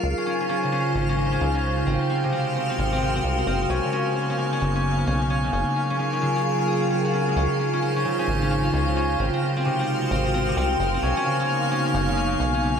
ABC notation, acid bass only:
X:1
M:4/4
L:1/8
Q:"Swing 16ths" 1/4=131
K:Db
V:1 name="Acid bass" clef=bass
D,, z3 A,,,2 D,,2 | A,,, z3 A,,,2 C,, G,,, | _C,, z3 G,,,2 C,,2 | G,,, z6 z |
D,, z3 A,,,2 D,,2 | A,,, z3 A,,,2 C,, G,,, | _C,, z3 G,,,2 C,,2 |]